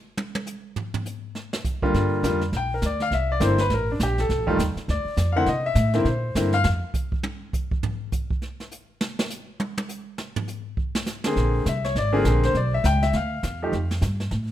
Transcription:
0.17 high tom
0.35 high tom
0.46 hi-hat pedal
0.76 floor tom
0.94 floor tom
1.06 hi-hat pedal
1.35 snare
1.53 snare
1.65 kick, hi-hat pedal
1.82 grand piano D3 G3 A#3 F4, kick
1.94 upright bass G2, brush sweep, snare
2.23 upright bass F2, grand piano D3 G3 A#3 F4, kick, snare, hi-hat pedal
2.41 snare
2.52 upright bass A#1, brush sweep, kick, snare
2.57 grand piano G5
2.74 grand piano A#4
2.82 upright bass D2, kick, snare, hi-hat pedal
2.86 grand piano D5
3.00 grand piano F5, snare
3.11 upright bass C2, grand piano E5, brush sweep, kick, snare
3.32 grand piano D5
3.40 upright bass G1, grand piano D3 A#3 C4 E4, kick, snare, hi-hat pedal
3.44 grand piano C5
3.58 grand piano B4, snare
3.70 upright bass A1, brush sweep, kick, snare
3.74 grand piano A#4
3.92 grand piano D4
4.00 upright bass A#1, grand piano G4, kick, snare, hi-hat pedal
4.18 grand piano A4, snare
4.29 upright bass C2, brush sweep, kick, snare
4.38 upright bass A1
4.47 upright bass F1, grand piano D#3 G3 A3 F4, kick
4.59 upright bass D#2, kick, snare, hi-hat pedal
4.76 muted upright bass stroke, snare
4.88 upright bass D2, grand piano D5, brush sweep, kick, snare
5.05 muted upright bass stroke
5.17 upright bass F2, kick, snare, hi-hat pedal
5.32 grand piano D3 F5
5.36 grand piano A#3 C4 E4 F#5
5.46 upright bass C3, grand piano D#5, brush sweep, kick, snare
5.66 grand piano E5
5.75 upright bass A2, kick, snare, hi-hat pedal
5.94 grand piano D3 A#3 C4 E4, snare
6.05 upright bass A#2, grand piano C5, brush sweep, kick, snare
6.35 upright bass G2, grand piano D3 A#3 C4 E4, kick, snare, hi-hat pedal
6.53 grand piano F5, snare
6.64 upright bass F2, snare
6.94 kick, hi-hat pedal
7.12 kick
7.23 high tom
7.53 kick, hi-hat pedal
7.71 kick
7.83 floor tom
8.12 kick, hi-hat pedal
8.30 kick
8.42 snare
8.60 snare
8.72 hi-hat pedal
9.01 snare
9.19 snare
9.30 hi-hat pedal
9.60 high tom
9.78 high tom
9.89 hi-hat pedal
10.18 snare
10.36 floor tom
10.48 hi-hat pedal
10.77 kick
10.95 snare
11.06 snare, hi-hat pedal
11.24 grand piano D3 A#3 C4 G#4, snare
11.36 upright bass A#1, brush sweep, kick, snare
11.66 upright bass C2, grand piano E5, kick, snare, hi-hat pedal
11.84 grand piano C#5, snare
11.95 upright bass G#1, grand piano D5, brush sweep, kick, snare
12.13 grand piano D3 A#3 C4 F4 G#4
12.25 upright bass A#1, grand piano G#4, kick, snare, hi-hat pedal
12.43 grand piano C5, snare
12.54 upright bass B1, grand piano D5, brush sweep, kick, snare
12.74 grand piano E5
12.84 upright bass C#2, grand piano G5, kick, snare, hi-hat pedal
13.03 grand piano E5, snare
13.13 upright bass D2, grand piano F5, brush sweep, kick, snare
13.43 upright bass E2, kick, snare, hi-hat pedal
13.62 grand piano F3 A3 D#4 G4
13.72 upright bass F2, brush sweep, kick, snare
13.91 snare
14.01 upright bass G2, kick, snare, hi-hat pedal
14.20 snare
14.31 upright bass A2, brush sweep, kick, snare

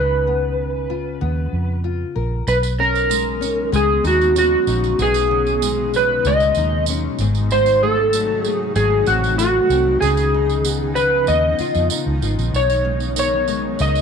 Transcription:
Already playing: fingered electric bass C#2, nylon-string guitar C#3 D#3 A#3 C#4, electric slide guitar B4
0.27 nylon-string guitar B3
0.90 nylon-string guitar F4
1.21 fingered electric bass D#2, nylon-string guitar B3
1.53 fingered electric bass F2
1.84 nylon-string guitar F4
2.16 fingered electric bass A#1, nylon-string guitar A#4
2.47 fingered electric bass B1, ambient pad C#3 D#3 F#3 B3 D#4, electric slide guitar B4, tambourine
2.63 tambourine
2.79 nylon-string guitar C#4, electric slide guitar A#4
2.95 tambourine
3.10 nylon-string guitar G#3, tambourine
3.41 nylon-string guitar C#4, tambourine
3.72 fingered electric bass C#2, nylon-string guitar G#3, electric slide guitar G#4, tambourine
4.04 fingered electric bass D#2, nylon-string guitar D#4, electric slide guitar F#4, tambourine
4.21 tambourine
4.35 nylon-string guitar C#4, electric slide guitar F#4, tambourine
4.67 fingered electric bass A#1, nylon-string guitar D#4, tambourine
4.84 tambourine
4.99 fingered electric bass B1, nylon-string guitar B2, electric slide guitar G#4, tambourine
5.14 tambourine
5.31 nylon-string guitar C#4
5.47 tambourine
5.62 nylon-string guitar G#3, tambourine
5.94 nylon-string guitar C#4, electric slide guitar B4, tambourine
6.25 fingered electric bass C#2, nylon-string guitar G#3, electric slide guitar D#5, tambourine
6.40 tambourine
6.55 fingered electric bass D#2, nylon-string guitar D#4, tambourine
6.86 nylon-string guitar C#4, tambourine
7.19 fingered electric bass G#1, nylon-string guitar G#2, ambient pad C3 A3, tambourine
7.35 tambourine
7.51 nylon-string guitar G#2, electric slide guitar C5, tambourine
7.66 tambourine
7.83 nylon-string guitar A3, electric slide guitar A4
8.13 nylon-string guitar F#3, tambourine
8.44 nylon-string guitar A3, electric slide guitar G#4, tambourine
8.76 fingered electric bass G#1, nylon-string guitar F#3, electric slide guitar G#4, tambourine
9.06 fingered electric bass A1, nylon-string guitar C4, electric slide guitar F#4, tambourine
9.24 tambourine
9.38 nylon-string guitar A3, electric slide guitar F#4, tambourine
9.70 fingered electric bass C2, nylon-string guitar C4, tambourine
10.00 fingered electric bass C#2, nylon-string guitar C#3, ambient pad C#3 F3 B3, electric slide guitar G#4, tambourine
10.17 tambourine
10.34 nylon-string guitar D#4
10.49 tambourine
10.65 nylon-string guitar B3, tambourine
10.95 nylon-string guitar D#4, electric slide guitar B4, tambourine
11.27 fingered electric bass D#2, nylon-string guitar B3, electric slide guitar D#5, tambourine
11.59 nylon-string guitar F4, muted fingered electric bass stroke, tambourine
11.75 fingered electric bass F2, tambourine
11.90 nylon-string guitar D#4, tambourine
12.06 fingered electric bass C#2
12.22 fingered electric bass G#1, nylon-string guitar F4, tambourine
12.38 fingered electric bass A#1, tambourine
12.53 fingered electric bass B1, ambient pad F#3, electric slide guitar C#5, tambourine
12.70 tambourine
12.85 nylon-string guitar G#3
13.00 tambourine
13.16 nylon-string guitar D#3, electric slide guitar C#5, tambourine
13.48 nylon-string guitar G#3, tambourine
13.79 fingered electric bass C#2, nylon-string guitar D#3, electric slide guitar D#5, tambourine
13.95 tambourine

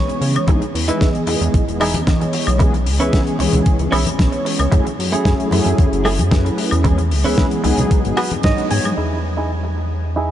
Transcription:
Already playing: analog polysynth E3 G#3 B3 C#4 C#5, clean electric guitar C#5
0.08 muted clean electric guitar stroke, closed hi-hat
0.21 analog synth bass C#3, muted clean electric guitar stroke, open hi-hat
0.35 muted clean electric guitar stroke, closed hi-hat, high woodblock
0.47 analog synth bass E2, analog polysynth E3 G#3 B3 D#4 G#4, muted clean electric guitar stroke, kick, closed hi-hat, high conga
0.62 muted clean electric guitar stroke, closed hi-hat
0.75 analog synth bass E2, open hi-hat
0.88 analog polysynth E3 G#3 B3 G#4 D#5, clean electric guitar D#4 E4 B4, closed hi-hat
1.01 analog synth bass E2, kick, snare, closed hi-hat
1.15 closed hi-hat
1.27 analog synth bass E2, analog polysynth E3 G#3 B3 G#4 D#5, muted clean electric guitar stroke, open hi-hat, high conga
1.41 analog synth bass E2, muted clean electric guitar stroke, closed hi-hat
1.54 analog synth bass B1, kick, closed hi-hat
1.68 analog synth bass E1, analog polysynth E3 G#3 B3 D#4 G#4, closed hi-hat
1.81 clean electric guitar D#4 E4 G#4, open hi-hat, high woodblock
1.94 analog synth bass E2, closed hi-hat, high conga
2.07 analog polysynth E3 G#3 B3 C#5 D#5, muted clean electric guitar stroke, kick, snare, closed hi-hat
2.21 muted clean electric guitar stroke, closed hi-hat
2.33 muted clean electric guitar stroke, open hi-hat
2.47 analog synth bass B1, muted clean electric guitar stroke, closed hi-hat, high woodblock
2.59 analog polysynth E3 G#3 B3 C#4 G#4, muted clean electric guitar stroke, kick, closed hi-hat, high conga
2.73 muted clean electric guitar stroke, closed hi-hat
2.86 analog synth bass C#2, open hi-hat
2.99 analog synth bass C#2, analog polysynth E3 G#3 B3 C#4 G#4, clean electric guitar C#4 E4 B4, closed hi-hat
3.13 analog synth bass C#2, kick, snare, closed hi-hat
3.27 closed hi-hat
3.39 analog synth bass C#2, analog polysynth E3 G#3 B3 C#4 G#4, muted clean electric guitar stroke, open hi-hat, high conga
3.52 analog synth bass C#2, muted clean electric guitar stroke, closed hi-hat, low conga
3.66 kick, closed hi-hat
3.79 analog synth bass C#2, analog polysynth E3 G#3 B3 C#4 G#4, closed hi-hat
3.92 analog synth bass B1, clean electric guitar C#4 E4 B4, open hi-hat, high woodblock
4.07 analog synth bass B1, closed hi-hat, high conga
4.19 analog synth bass B1, analog polysynth E3 G#3 B3 C#4 C#5, muted clean electric guitar stroke, kick, snare, closed hi-hat
4.32 muted clean electric guitar stroke, closed hi-hat
4.45 muted clean electric guitar stroke, open hi-hat
4.59 analog synth bass C#2, muted clean electric guitar stroke, closed hi-hat, high woodblock
4.72 analog synth bass F#2, analog polysynth F#3 A3 C#4 E4 G#4, muted clean electric guitar stroke, kick, closed hi-hat, high conga
4.85 muted clean electric guitar stroke, closed hi-hat
4.99 analog synth bass F#2, open hi-hat
5.12 analog polysynth F#3 A3 C#4 E4 G#4, clean electric guitar A3 E4 G#4, closed hi-hat
5.25 analog synth bass F#2, kick, snare, closed hi-hat
5.40 closed hi-hat
5.51 analog synth bass F#2, analog polysynth F#3 A3 C#4 E4 G#4, muted clean electric guitar stroke, open hi-hat, high conga
5.65 analog synth bass F#2, muted clean electric guitar stroke, closed hi-hat
5.78 analog synth bass E2, kick, closed hi-hat
5.92 analog synth bass F#1, analog polysynth F#3 A3 C#4 E4 G#4, closed hi-hat
6.05 clean electric guitar A3 E4 G#4, open hi-hat, high woodblock
6.19 analog synth bass F#2, closed hi-hat, high conga
6.31 analog polysynth F#3 A3 C#4 E4 B4, muted clean electric guitar stroke, kick, snare, closed hi-hat
6.45 muted clean electric guitar stroke, closed hi-hat
6.58 muted clean electric guitar stroke, open hi-hat
6.71 analog synth bass E2, muted clean electric guitar stroke, closed hi-hat, high woodblock
6.84 analog polysynth E3 G#3 B3 C#4 G#4, muted clean electric guitar stroke, kick, closed hi-hat, high conga
6.98 muted clean electric guitar stroke, closed hi-hat
7.11 analog synth bass C#2, open hi-hat
7.24 analog synth bass C#2, analog polysynth E3 G#3 B3 C#4 G#4, clean electric guitar C#4 E4 B4, open hi-hat
7.38 analog synth bass C#2, kick, snare, closed hi-hat
7.51 closed hi-hat
7.64 analog synth bass C#2, analog polysynth F#3 G#3 B3 D#4 G#4, muted clean electric guitar stroke, open hi-hat, high conga
7.77 analog synth bass C#2, muted clean electric guitar stroke, closed hi-hat, low conga
7.91 kick, closed hi-hat
8.04 analog synth bass G#1, analog polysynth F#3 G#3 B3 D#4 G#4, closed hi-hat
8.17 clean electric guitar F#4 G#4 B4, open hi-hat, high woodblock
8.31 analog synth bass G#2, closed hi-hat, high conga
8.43 analog synth bass G#2, analog polysynth F#3 G#3 B3 D#4 C#5, clean electric guitar D#5, muted clean electric guitar stroke, kick, snare, closed hi-hat
8.57 muted clean electric guitar stroke, closed hi-hat
8.70 analog synth bass G#2, clean electric guitar G#5, muted clean electric guitar stroke, open hi-hat
8.84 analog synth bass G#2, muted clean electric guitar stroke, closed hi-hat, high woodblock
8.97 analog synth bass E2, analog polysynth E3 G#3 B3 G#4 D#5, clean electric guitar D#4 E4 G#4
9.37 clean electric guitar D#4 E4 G#4
9.63 muted clean electric guitar stroke
9.77 muted clean electric guitar stroke
10.16 clean electric guitar D#4 E4 G#4

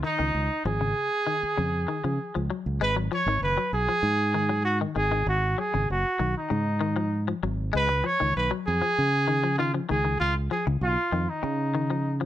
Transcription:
0.03 clean electric guitar D#3, trumpet D#4
0.19 fingered electric bass C#2, clean electric guitar D#3
0.35 fingered electric bass C#2
0.65 fingered electric bass G#1, clean electric guitar F3, trumpet G#4
0.81 clean electric guitar C#3
1.27 clean electric guitar D#3
1.43 muted fingered electric bass stroke
1.58 fingered electric bass F2, clean electric guitar C#3
1.88 clean electric guitar D#3
2.04 fingered electric bass C#3, clean electric guitar F3
2.35 fingered electric bass C#2, clean electric guitar F3
2.50 clean electric guitar F#3
2.66 fingered electric bass C#2
2.81 fingered electric bass G#1, clean electric guitar G#3, trumpet B4
2.96 clean electric guitar F#3
3.12 clean electric guitar F3, trumpet C#5
3.26 fingered electric bass G#1, clean electric guitar D#3
3.42 fingered electric bass F#1, trumpet B4
3.58 clean electric guitar F#3
3.73 fingered electric bass B1, trumpet G#4
3.89 clean electric guitar F3
4.03 fingered electric bass G#2
4.34 clean electric guitar D#3
4.49 clean electric guitar F#3
4.65 trumpet F#4
4.81 clean electric guitar D#3
4.96 fingered electric bass G#1, clean electric guitar D#3, trumpet G#4
5.12 clean electric guitar D#3
5.27 fingered electric bass G#1, trumpet F#4
5.58 clean electric guitar F#3, trumpet G#4
5.74 fingered electric bass G#1, clean electric guitar C#3
5.90 fingered electric bass F#1, trumpet F#4
6.19 fingered electric bass B1, clean electric guitar D#3
6.37 trumpet D#4
6.50 fingered electric bass G#2, clean electric guitar C#3
6.81 clean electric guitar D#3
6.96 clean electric guitar F3
7.28 clean electric guitar F3
7.43 fingered electric bass G#1, clean electric guitar F#3
7.73 fingered electric bass C#2, clean electric guitar G#3, trumpet B4
7.89 muted clean electric guitar stroke
8.04 clean electric guitar F3, trumpet C#5
8.20 fingered electric bass C#2, clean electric guitar D#3
8.37 fingered electric bass B1, trumpet B4
8.51 clean electric guitar F#3
8.67 fingered electric bass F2, trumpet G#4
8.82 clean electric guitar F3
8.99 fingered electric bass C#3
9.28 clean electric guitar D#3
9.44 clean electric guitar F3
9.58 clean electric guitar D#3, trumpet F4
9.74 clean electric guitar F3
9.89 fingered electric bass C#2, clean electric guitar D#3, trumpet G#4
10.05 clean electric guitar D#3
10.20 fingered electric bass C#2, trumpet F4
10.51 clean electric guitar F3, trumpet G#4
10.67 fingered electric bass C#2, clean electric guitar C#3
10.81 fingered electric bass B1, trumpet F4
11.12 fingered electric bass F2, clean electric guitar D#3
11.29 trumpet D#4
11.43 clean electric guitar C#3, fingered electric bass C#3
11.75 clean electric guitar D#3
11.90 clean electric guitar F3
12.21 clean electric guitar F3

